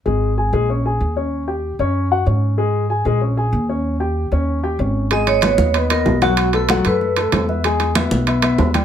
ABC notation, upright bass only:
X:1
M:4/4
L:1/8
Q:1/4=190
K:D#phr
V:1 name="Upright bass" clef=bass
G,,,3 A,,,3 D,,2- | D,,3 F,,3 G,,2- | G,,3 A,,,3 D,,2- | D,,3 D,,3 G,,,2- |
[K:B] G,,,3 D,,3 B,,,2- | B,,,3 F,,3 E,,2- | E,,3 B,,,3 D,,2 |]